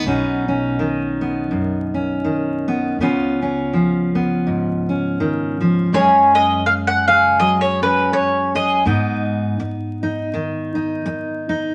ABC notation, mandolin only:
X:1
M:4/4
L:1/16
Q:"Swing" 1/4=82
K:F#
V:1 name="Mandolin"
z16 | z16 | c2 d2 e f e2 d c B2 c2 d2- | d2 z12 z2 |]